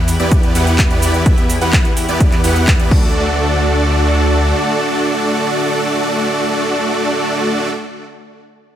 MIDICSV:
0, 0, Header, 1, 5, 480
1, 0, Start_track
1, 0, Key_signature, 2, "major"
1, 0, Tempo, 472441
1, 1280, Time_signature, 4, 2, 24, 8
1, 8899, End_track
2, 0, Start_track
2, 0, Title_t, "Supersaw synth"
2, 0, Program_c, 0, 81
2, 199, Note_on_c, 0, 59, 76
2, 199, Note_on_c, 0, 74, 86
2, 200, Note_on_c, 0, 64, 73
2, 200, Note_on_c, 0, 67, 72
2, 200, Note_on_c, 0, 71, 70
2, 531, Note_off_c, 0, 59, 0
2, 531, Note_off_c, 0, 64, 0
2, 531, Note_off_c, 0, 67, 0
2, 531, Note_off_c, 0, 71, 0
2, 531, Note_off_c, 0, 74, 0
2, 560, Note_on_c, 0, 59, 86
2, 560, Note_on_c, 0, 64, 79
2, 560, Note_on_c, 0, 67, 82
2, 560, Note_on_c, 0, 71, 78
2, 560, Note_on_c, 0, 78, 94
2, 891, Note_off_c, 0, 59, 0
2, 891, Note_off_c, 0, 64, 0
2, 891, Note_off_c, 0, 67, 0
2, 891, Note_off_c, 0, 71, 0
2, 891, Note_off_c, 0, 78, 0
2, 919, Note_on_c, 0, 67, 77
2, 920, Note_on_c, 0, 59, 84
2, 920, Note_on_c, 0, 64, 75
2, 920, Note_on_c, 0, 71, 78
2, 920, Note_on_c, 0, 74, 93
2, 1251, Note_off_c, 0, 59, 0
2, 1251, Note_off_c, 0, 64, 0
2, 1251, Note_off_c, 0, 67, 0
2, 1251, Note_off_c, 0, 71, 0
2, 1251, Note_off_c, 0, 74, 0
2, 1279, Note_on_c, 0, 59, 80
2, 1279, Note_on_c, 0, 64, 74
2, 1279, Note_on_c, 0, 67, 72
2, 1279, Note_on_c, 0, 71, 70
2, 1279, Note_on_c, 0, 76, 90
2, 1442, Note_off_c, 0, 59, 0
2, 1442, Note_off_c, 0, 64, 0
2, 1442, Note_off_c, 0, 67, 0
2, 1442, Note_off_c, 0, 71, 0
2, 1442, Note_off_c, 0, 76, 0
2, 1639, Note_on_c, 0, 59, 82
2, 1639, Note_on_c, 0, 64, 74
2, 1639, Note_on_c, 0, 67, 73
2, 1639, Note_on_c, 0, 71, 73
2, 1639, Note_on_c, 0, 78, 92
2, 1899, Note_off_c, 0, 59, 0
2, 1899, Note_off_c, 0, 64, 0
2, 1899, Note_off_c, 0, 67, 0
2, 1899, Note_off_c, 0, 71, 0
2, 1899, Note_off_c, 0, 78, 0
2, 2119, Note_on_c, 0, 59, 76
2, 2119, Note_on_c, 0, 64, 72
2, 2119, Note_on_c, 0, 67, 72
2, 2119, Note_on_c, 0, 71, 70
2, 2119, Note_on_c, 0, 74, 85
2, 2451, Note_off_c, 0, 59, 0
2, 2451, Note_off_c, 0, 64, 0
2, 2451, Note_off_c, 0, 67, 0
2, 2451, Note_off_c, 0, 71, 0
2, 2451, Note_off_c, 0, 74, 0
2, 2479, Note_on_c, 0, 59, 94
2, 2479, Note_on_c, 0, 67, 84
2, 2479, Note_on_c, 0, 78, 103
2, 2480, Note_on_c, 0, 64, 81
2, 2480, Note_on_c, 0, 71, 84
2, 2811, Note_off_c, 0, 59, 0
2, 2811, Note_off_c, 0, 64, 0
2, 2811, Note_off_c, 0, 67, 0
2, 2811, Note_off_c, 0, 71, 0
2, 2811, Note_off_c, 0, 78, 0
2, 2840, Note_on_c, 0, 59, 77
2, 2840, Note_on_c, 0, 64, 68
2, 2840, Note_on_c, 0, 67, 68
2, 2840, Note_on_c, 0, 71, 70
2, 2840, Note_on_c, 0, 74, 85
2, 2948, Note_off_c, 0, 74, 0
2, 2960, Note_off_c, 0, 59, 0
2, 2960, Note_off_c, 0, 64, 0
2, 2960, Note_off_c, 0, 67, 0
2, 2960, Note_off_c, 0, 71, 0
2, 2960, Note_on_c, 0, 62, 76
2, 2960, Note_on_c, 0, 66, 80
2, 2960, Note_on_c, 0, 69, 80
2, 2960, Note_on_c, 0, 74, 97
2, 2961, Note_on_c, 0, 57, 86
2, 7812, Note_off_c, 0, 57, 0
2, 7812, Note_off_c, 0, 62, 0
2, 7812, Note_off_c, 0, 66, 0
2, 7812, Note_off_c, 0, 69, 0
2, 7812, Note_off_c, 0, 74, 0
2, 8899, End_track
3, 0, Start_track
3, 0, Title_t, "Analog synth pad"
3, 0, Program_c, 1, 89
3, 0, Note_on_c, 1, 52, 79
3, 0, Note_on_c, 1, 64, 75
3, 0, Note_on_c, 1, 67, 72
3, 0, Note_on_c, 1, 71, 88
3, 2924, Note_off_c, 1, 52, 0
3, 2924, Note_off_c, 1, 64, 0
3, 2924, Note_off_c, 1, 67, 0
3, 2924, Note_off_c, 1, 71, 0
3, 2961, Note_on_c, 1, 62, 73
3, 2961, Note_on_c, 1, 66, 76
3, 2961, Note_on_c, 1, 69, 94
3, 2962, Note_on_c, 1, 50, 82
3, 7813, Note_off_c, 1, 50, 0
3, 7813, Note_off_c, 1, 62, 0
3, 7813, Note_off_c, 1, 66, 0
3, 7813, Note_off_c, 1, 69, 0
3, 8899, End_track
4, 0, Start_track
4, 0, Title_t, "Detuned saw bass"
4, 0, Program_c, 2, 39
4, 0, Note_on_c, 2, 40, 102
4, 175, Note_off_c, 2, 40, 0
4, 200, Note_on_c, 2, 40, 96
4, 536, Note_off_c, 2, 40, 0
4, 560, Note_on_c, 2, 40, 99
4, 896, Note_off_c, 2, 40, 0
4, 920, Note_on_c, 2, 40, 102
4, 1256, Note_off_c, 2, 40, 0
4, 1280, Note_on_c, 2, 40, 99
4, 1616, Note_off_c, 2, 40, 0
4, 1640, Note_on_c, 2, 40, 99
4, 2096, Note_off_c, 2, 40, 0
4, 2119, Note_on_c, 2, 40, 99
4, 2455, Note_off_c, 2, 40, 0
4, 2480, Note_on_c, 2, 40, 100
4, 2816, Note_off_c, 2, 40, 0
4, 2840, Note_on_c, 2, 40, 102
4, 2954, Note_off_c, 2, 40, 0
4, 2960, Note_on_c, 2, 38, 101
4, 4599, Note_off_c, 2, 38, 0
4, 8899, End_track
5, 0, Start_track
5, 0, Title_t, "Drums"
5, 80, Note_on_c, 9, 46, 99
5, 82, Note_on_c, 9, 69, 83
5, 181, Note_off_c, 9, 46, 0
5, 183, Note_off_c, 9, 69, 0
5, 200, Note_on_c, 9, 42, 40
5, 202, Note_on_c, 9, 69, 34
5, 301, Note_off_c, 9, 42, 0
5, 303, Note_off_c, 9, 69, 0
5, 320, Note_on_c, 9, 36, 115
5, 320, Note_on_c, 9, 42, 101
5, 322, Note_on_c, 9, 69, 48
5, 421, Note_off_c, 9, 36, 0
5, 421, Note_off_c, 9, 42, 0
5, 423, Note_off_c, 9, 69, 0
5, 440, Note_on_c, 9, 42, 41
5, 442, Note_on_c, 9, 69, 23
5, 542, Note_off_c, 9, 42, 0
5, 544, Note_off_c, 9, 69, 0
5, 560, Note_on_c, 9, 46, 103
5, 561, Note_on_c, 9, 69, 85
5, 661, Note_off_c, 9, 46, 0
5, 663, Note_off_c, 9, 69, 0
5, 680, Note_on_c, 9, 42, 43
5, 681, Note_on_c, 9, 69, 36
5, 781, Note_off_c, 9, 42, 0
5, 783, Note_off_c, 9, 69, 0
5, 798, Note_on_c, 9, 39, 120
5, 800, Note_on_c, 9, 36, 110
5, 800, Note_on_c, 9, 42, 96
5, 802, Note_on_c, 9, 69, 48
5, 900, Note_off_c, 9, 39, 0
5, 901, Note_off_c, 9, 36, 0
5, 901, Note_off_c, 9, 42, 0
5, 903, Note_off_c, 9, 69, 0
5, 920, Note_on_c, 9, 42, 42
5, 922, Note_on_c, 9, 69, 24
5, 1021, Note_off_c, 9, 42, 0
5, 1023, Note_off_c, 9, 69, 0
5, 1039, Note_on_c, 9, 46, 106
5, 1041, Note_on_c, 9, 69, 85
5, 1141, Note_off_c, 9, 46, 0
5, 1142, Note_off_c, 9, 69, 0
5, 1160, Note_on_c, 9, 42, 41
5, 1162, Note_on_c, 9, 69, 34
5, 1262, Note_off_c, 9, 42, 0
5, 1263, Note_off_c, 9, 69, 0
5, 1279, Note_on_c, 9, 42, 101
5, 1280, Note_on_c, 9, 36, 119
5, 1281, Note_on_c, 9, 69, 47
5, 1381, Note_off_c, 9, 36, 0
5, 1381, Note_off_c, 9, 42, 0
5, 1383, Note_off_c, 9, 69, 0
5, 1399, Note_on_c, 9, 42, 44
5, 1401, Note_on_c, 9, 69, 24
5, 1501, Note_off_c, 9, 42, 0
5, 1503, Note_off_c, 9, 69, 0
5, 1519, Note_on_c, 9, 46, 101
5, 1521, Note_on_c, 9, 69, 81
5, 1621, Note_off_c, 9, 46, 0
5, 1623, Note_off_c, 9, 69, 0
5, 1640, Note_on_c, 9, 42, 42
5, 1642, Note_on_c, 9, 69, 36
5, 1741, Note_off_c, 9, 42, 0
5, 1743, Note_off_c, 9, 69, 0
5, 1758, Note_on_c, 9, 39, 122
5, 1759, Note_on_c, 9, 36, 113
5, 1759, Note_on_c, 9, 42, 96
5, 1761, Note_on_c, 9, 69, 46
5, 1859, Note_off_c, 9, 39, 0
5, 1861, Note_off_c, 9, 36, 0
5, 1861, Note_off_c, 9, 42, 0
5, 1863, Note_off_c, 9, 69, 0
5, 1879, Note_on_c, 9, 42, 41
5, 1881, Note_on_c, 9, 69, 23
5, 1981, Note_off_c, 9, 42, 0
5, 1983, Note_off_c, 9, 69, 0
5, 1999, Note_on_c, 9, 46, 103
5, 2001, Note_on_c, 9, 69, 77
5, 2100, Note_off_c, 9, 46, 0
5, 2102, Note_off_c, 9, 69, 0
5, 2119, Note_on_c, 9, 42, 41
5, 2121, Note_on_c, 9, 69, 35
5, 2221, Note_off_c, 9, 42, 0
5, 2223, Note_off_c, 9, 69, 0
5, 2240, Note_on_c, 9, 36, 113
5, 2240, Note_on_c, 9, 42, 99
5, 2242, Note_on_c, 9, 69, 48
5, 2341, Note_off_c, 9, 36, 0
5, 2341, Note_off_c, 9, 42, 0
5, 2343, Note_off_c, 9, 69, 0
5, 2358, Note_on_c, 9, 39, 38
5, 2360, Note_on_c, 9, 42, 41
5, 2362, Note_on_c, 9, 69, 23
5, 2460, Note_off_c, 9, 39, 0
5, 2461, Note_off_c, 9, 42, 0
5, 2463, Note_off_c, 9, 69, 0
5, 2479, Note_on_c, 9, 46, 103
5, 2481, Note_on_c, 9, 69, 84
5, 2581, Note_off_c, 9, 46, 0
5, 2583, Note_off_c, 9, 69, 0
5, 2599, Note_on_c, 9, 42, 44
5, 2601, Note_on_c, 9, 69, 36
5, 2701, Note_off_c, 9, 42, 0
5, 2703, Note_off_c, 9, 69, 0
5, 2718, Note_on_c, 9, 39, 120
5, 2720, Note_on_c, 9, 36, 115
5, 2720, Note_on_c, 9, 42, 98
5, 2722, Note_on_c, 9, 69, 48
5, 2820, Note_off_c, 9, 39, 0
5, 2821, Note_off_c, 9, 36, 0
5, 2821, Note_off_c, 9, 42, 0
5, 2823, Note_off_c, 9, 69, 0
5, 2840, Note_on_c, 9, 42, 42
5, 2841, Note_on_c, 9, 69, 23
5, 2941, Note_off_c, 9, 42, 0
5, 2943, Note_off_c, 9, 69, 0
5, 2959, Note_on_c, 9, 49, 90
5, 2960, Note_on_c, 9, 36, 112
5, 3061, Note_off_c, 9, 49, 0
5, 3062, Note_off_c, 9, 36, 0
5, 8899, End_track
0, 0, End_of_file